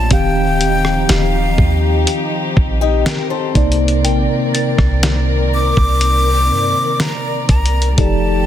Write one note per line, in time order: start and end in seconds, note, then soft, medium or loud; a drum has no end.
0.00 0.11 A#2 medium
0.00 0.12 A3 soft
0.00 0.11 A#3 soft
0.00 0.13 C#5 soft
0.00 0.15 D5 medium
0.00 0.12 A5 loud
0.10 1.05 D#1 loud
0.10 3.51 D#3 medium
0.10 3.52 F3 medium
0.10 3.51 C4 medium
0.10 7.94 C4 medium
0.10 3.52 D#4 medium
0.10 3.52 G4 medium
0.10 3.52 F5 medium
0.10 1.12 G5 loud
0.10 kick loud
0.10 closed hi-hat medium
0.61 closed hi-hat medium
0.85 cross-stick medium
1.09 1.57 D#1 loud
1.09 2.09 F5 medium
1.09 snare loud
1.09 closed hi-hat medium
1.58 2.06 D#2 loud
1.58 kick medium
2.07 closed hi-hat medium
2.57 3.04 A#1 loud
2.57 kick medium
2.81 3.05 D#4 medium
2.81 3.05 G4 medium
3.06 3.30 G4 medium
3.06 3.29 A#4 medium
3.06 snare loud
3.06 closed hi-hat medium
3.30 3.77 A4 medium
3.30 3.77 C5 medium
3.54 4.06 C2 loud
3.54 7.44 C3 medium
3.54 8.46 D#3 medium
3.54 7.45 A#3 medium
3.54 7.45 D#4 medium
3.54 7.94 A#4 medium
3.54 8.46 D5 medium
3.54 7.46 D5 medium
3.54 kick loud
3.54 closed hi-hat medium
3.72 closed hi-hat medium
3.88 closed hi-hat soft
4.04 4.28 A#1 loud
4.04 7.83 G5 medium
4.04 closed hi-hat medium
4.54 8.32 A6 medium
4.54 closed hi-hat medium
4.78 5.73 C2 loud
4.78 kick loud
4.78 cross-stick medium
5.03 snare loud
5.03 closed hi-hat medium
5.54 7.02 D6 loud
5.77 6.52 C2 loud
5.77 kick medium
6.01 closed hi-hat medium
6.50 6.74 G2 medium
7.00 7.49 A#5 loud
7.00 snare loud
7.00 closed hi-hat medium
7.49 7.96 C2 loud
7.49 8.00 A#5 loud
7.49 kick medium
7.49 closed hi-hat medium
7.66 closed hi-hat medium
7.82 closed hi-hat medium
7.97 8.45 F1 loud
7.97 8.46 F3 medium
7.97 8.46 A3 medium
7.97 8.46 D#4 medium
7.97 8.46 G4 medium
7.97 8.46 A4 medium
7.97 8.46 D5 medium
7.97 8.46 A5 loud
7.97 kick loud
7.97 closed hi-hat medium